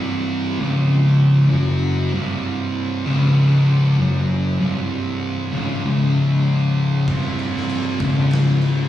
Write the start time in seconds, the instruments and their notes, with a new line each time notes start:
Already playing: picked electric bass C1, distorted electric guitar C2 C3
0.59 picked electric bass C#1, distorted electric guitar C#2 C#3
1.51 picked electric bass F#1, distorted electric guitar F#2 F#3
2.14 picked electric bass C1, distorted electric guitar C2 C3
3.06 picked electric bass C#1, distorted electric guitar C#2 C#3
3.98 picked electric bass F#1, distorted electric guitar F#2 F#3
4.59 picked electric bass C1, distorted electric guitar C2 C3
5.53 picked electric bass C#1, distorted electric guitar C#2 C#3
5.84 picked electric bass C#1, distorted electric guitar C#2 C#3
7.07 picked electric bass C1, distorted electric guitar C2 C3, kick, crash
7.39 crash
7.57 snare
7.69 crash
8.00 picked electric bass C#1, distorted electric guitar C#2 C#3, kick, crash
8.31 snare, crash
8.62 crash